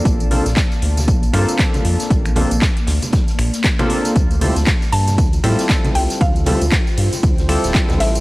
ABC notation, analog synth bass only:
X:1
M:4/4
L:1/16
Q:"Swing 16ths" 1/4=117
K:Dm
V:1 name="Analog synth bass" clef=bass
B,,,3 B,,, z2 D,,2 B,,,2 G,, z3 F,, z | B,,,3 B,,, z2 D,, z3 B,,, z4 z | D,,3 D,, z2 G,,2 D,,2 A,, z3 C,, z | D,,3 D,, z2 G,, z D,, D,,2 D,,, z D,, A,,,2 |]